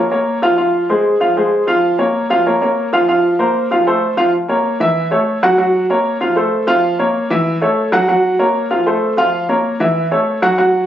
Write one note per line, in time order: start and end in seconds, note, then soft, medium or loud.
0.11 0.37 A#3 medium
0.11 0.37 A#4 medium
0.11 0.37 C#5 medium
0.42 0.55 F3 medium
0.42 0.55 F4 loud
0.42 0.56 F5 medium
0.57 0.83 F3 medium
0.57 0.84 F4 medium
0.57 0.84 F5 medium
0.90 1.15 G#3 medium
0.90 1.15 G#4 medium
0.90 1.15 C5 medium
1.20 1.33 F3 medium
1.20 1.34 F4 medium
1.20 1.34 F5 medium
1.37 1.62 G#3 medium
1.37 1.62 G#4 medium
1.37 1.62 C5 medium
1.67 1.93 F3 medium
1.67 1.93 F4 medium
1.67 1.93 F5 medium
1.98 2.24 A#3 medium
1.98 2.24 A#4 medium
1.98 2.25 C#5 medium
2.30 2.43 F3 medium
2.30 2.43 F4 medium
2.30 2.43 F5 medium
2.46 2.59 A#3 medium
2.46 2.59 A#4 medium
2.46 2.59 C#5 medium
2.61 2.87 A#3 medium
2.61 2.87 A#4 medium
2.61 2.88 C#5 medium
2.93 3.06 F3 medium
2.93 3.06 F4 medium
2.93 3.06 F5 medium
3.08 3.34 F3 medium
3.08 3.34 F4 medium
3.08 3.34 F5 medium
3.39 3.65 A#3 medium
3.39 3.65 A#4 medium
3.39 3.65 C5 medium
3.71 3.84 F3 medium
3.71 3.84 F4 medium
3.71 3.84 F5 medium
3.87 4.12 A3 medium
3.87 4.12 A4 medium
3.87 4.13 C5 medium
4.17 4.30 F3 loud
4.17 4.30 F4 loud
4.17 4.31 F5 medium
4.48 4.74 A#3 medium
4.48 4.75 A#4 medium
4.48 4.75 C#5 medium
4.80 5.06 E3 medium
4.80 5.06 E4 medium
4.80 5.06 E5 medium
5.11 5.37 A3 medium
5.11 5.37 A4 medium
5.11 5.37 C#5 medium
5.43 5.56 F#3 medium
5.43 5.56 F#4 medium
5.43 5.56 F#5 medium
5.58 5.84 F#3 medium
5.58 5.84 F#4 medium
5.58 5.84 F#5 medium
5.90 6.15 A#3 medium
5.90 6.15 A#4 medium
5.90 6.16 C#5 medium
6.21 6.34 F3 medium
6.21 6.34 F4 medium
6.21 6.34 F5 medium
6.36 6.62 A3 medium
6.36 6.62 A4 medium
6.36 6.62 C5 medium
6.67 6.93 F3 loud
6.67 6.93 F4 loud
6.67 6.93 F5 medium
6.99 7.24 A#3 medium
6.99 7.25 A#4 medium
6.99 7.25 C#5 medium
7.30 7.56 E3 loud
7.30 7.56 E4 medium
7.30 7.56 E5 medium
7.61 7.87 A3 medium
7.61 7.87 A4 medium
7.61 7.87 C#5 medium
7.92 8.05 F#3 loud
7.92 8.05 F#4 loud
7.92 8.06 F#5 medium
8.08 8.34 F#3 medium
8.08 8.34 F#4 medium
8.08 8.34 F#5 medium
8.39 8.65 A#3 medium
8.39 8.65 A#4 medium
8.39 8.65 C#5 medium
8.71 8.83 F3 medium
8.71 8.83 F4 medium
8.71 8.83 F5 medium
8.86 9.12 A3 medium
8.86 9.12 A4 medium
8.86 9.12 C5 medium
9.17 9.43 F3 medium
9.17 9.43 F4 loud
9.17 9.43 F5 medium
9.49 9.74 A#3 medium
9.49 9.74 A#4 medium
9.49 9.74 C#5 medium
9.80 10.05 E3 loud
9.80 10.06 E4 medium
9.80 10.06 E5 medium
10.11 10.37 A3 medium
10.11 10.37 A4 medium
10.11 10.37 C#5 medium
10.42 10.55 F#3 medium
10.42 10.55 F#4 medium
10.42 10.55 F#5 medium
10.58 10.83 F#3 medium
10.58 10.83 F#4 medium
10.58 10.83 F#5 medium